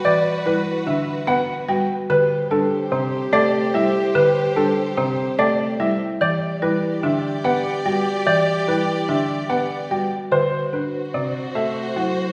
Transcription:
<<
  \new Staff \with { instrumentName = "Grand piano" } { \time 5/4 \key a \dorian \tempo 4 = 146 d''8 r8 b'8 r8 e''8 r8 fis''8 r8 g''8 r8 | b'8 r8 a'8 r8 c''8 r8 d''8 r8 e''8 r8 | b'8 r8 a'8 r8 c''8 r8 d''8 r8 e''8 r8 | d''8 r8 b'8 r8 e''8 r8 fis''8 r8 g''8 r8 |
d''8 r8 b'8 r8 e''8 r8 fis''8 r8 g''8 r8 | c''8 r8 b'8 r8 d''8 r8 e''8 r8 fis''8 r8 | }
  \new Staff \with { instrumentName = "String section" } { \time 5/4 \key a \dorian <fis' b'>1~ <fis' b'>8 r8 | <g' c''>1~ <g' c''>4~ | <g' c''>1~ <g' c''>8 r8 | <g' d''>1~ <g' d''>4~ |
<g' d''>1~ <g' d''>8 r8 | <fis' c''>1~ <fis' c''>4 | }
  \new Staff \with { instrumentName = "Clarinet" } { \time 5/4 \key a \dorian b'1~ b'8 r8 | g'1~ g'4~ | g'1~ g'8 r8 | g'1~ g'4~ |
g'1~ g'8 r8 | fis'1~ fis'4 | }
  \new Staff \with { instrumentName = "Marimba" } { \time 5/4 \key a \dorian d''8 r8 e'8 r8 d'8 r8 b'8 r8 fis'8 r8 | b'8 r8 d'8 r8 c'8 r8 a'8 r8 e'8 r8 | b'8 r8 d'8 r8 c'8 r8 a'8 r8 e'8 r8 | d''8 r8 e'8 r8 d'8 r8 b'8 r8 fis'8 r8 |
d''8 r8 e'8 r8 d'8 r8 b'8 r8 fis'8 r8 | b'8 r8 d'8 r8 c'8 r8 a'8 r8 e'8 r8 | }
  \new Staff \with { instrumentName = "Marimba" } { \clef bass \time 5/4 \key a \dorian e8 r8 g8 r8 d8 r8 b8 r8 g8 r8 | d8 r8 g8 r8 c8 r8 a8 r8 g8 r8 | d8 r8 g8 r8 c8 r8 a8 r8 g8 r8 | e8 r8 g8 r8 d8 r8 b8 r8 g8 r8 |
e8 r8 g8 r8 d8 r8 b8 r8 g8 r8 | d8 r4. c8 r8 a8 r8 fis8 r8 | }
>>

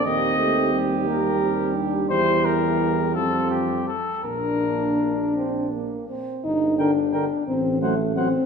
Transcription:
<<
  \new Staff \with { instrumentName = "Trumpet" } { \time 6/8 \key bes \major \tempo 4. = 57 ees''4 r8 bes'4 r8 | c''8 bes'4 a'8 g'8 a'8 | bes'4. r4. | \key g \minor r8 g''8 g''8 r8 fis''8 fis''8 | }
  \new Staff \with { instrumentName = "Flugelhorn" } { \time 6/8 \key bes \major g'2. | g'4. f'4 r8 | d'2~ d'8 r8 | \key g \minor r8 bes'8 bes'8 r8 c''8 c''8 | }
  \new Staff \with { instrumentName = "French horn" } { \time 6/8 \key bes \major c'4. bes8 c'8 d'8 | e'4. c'4 r8 | d'2~ d'16 r8. | \key g \minor ees'8 d'4 c'8 a8 c'8 | }
  \new Staff \with { instrumentName = "Trombone" } { \clef bass \time 6/8 \key bes \major bes8 a8 g8 g4.~ | g2~ g8 r8 | bes4. c'8 bes8 c'8 | \key g \minor r8 d8 d8 r8 fis8 fis8 | }
  \new Staff \with { instrumentName = "Tuba" } { \clef bass \time 6/8 \key bes \major ees,2. | e,4. f,4 r8 | bes,,2~ bes,,8 r8 | \key g \minor g,,4. a,,4. | }
>>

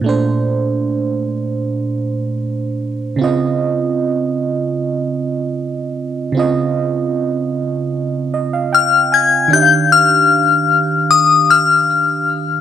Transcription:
<<
  \new Staff \with { instrumentName = "Synth bell" } { \time 4/4 \key ees \lydian \tempo 4 = 76 r1 | r1 | r2. f'''8 aes'''8 | g'''8 f'''4. ees'''8 f'''4. | }
  \new Staff \with { instrumentName = "FM electric piano" } { \time 4/4 \key ees \lydian << { r1 | r1 | r2 r8 ees''16 f''16 g''8 aes''8 | r1 | } \\ { <bes, a d' c''>1 | <des c' f' ees''>1 | <des c' f' ees''>1 | <ees d' g' fes'' f''>1 | } >> }
>>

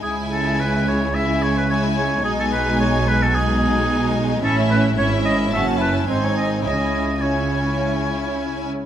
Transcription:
<<
  \new Staff \with { instrumentName = "Violin section" } { \time 4/4 \key cis \minor \tempo 4 = 109 gis''2 gis''4 gis''4 | gis''2 gis''2 | e''4 e''4 a''4 gis''4 | gis''4 gis''2~ gis''8 r8 | }
  \new Staff \with { instrumentName = "Oboe" } { \time 4/4 \key cis \minor gis'8 a'8 b'8 cis''8 e''8 cis''16 b'16 cis''8 cis''8 | gis'16 a'16 b'8 cis''8 b'16 a'16 gis'4. r8 | a'8 b'8 cis''8 dis''8 e''8 b'8 bis'16 cis''16 dis''8 | dis''4 cis''2~ cis''8 r8 | }
  \new Staff \with { instrumentName = "Violin section" } { \time 4/4 \key cis \minor e'2 e'4 e'4 | dis'2 dis'2 | e'4 e'4 fis'8 e'8 dis'4 | e'4 e'2~ e'8 r8 | }
  \new Staff \with { instrumentName = "Viola section" } { \time 4/4 \key cis \minor gis2 gis4 gis4 | gis2 gis2 | cis'4 cis'4 cis'4 bis4 | cis'4 cis'2~ cis'8 r8 | }
  \new Staff \with { instrumentName = "Cello section" } { \clef bass \time 4/4 \key cis \minor cis1 | b,1 | a,4 gis,4 fis,4 gis,4 | cis2.~ cis8 r8 | }
  \new Staff \with { instrumentName = "Double bass section" } { \clef bass \time 4/4 \key cis \minor cis,1 | b,,1 | a,,4 gis,,4 fis,,4 gis,,4 | cis,2.~ cis,8 r8 | }
>>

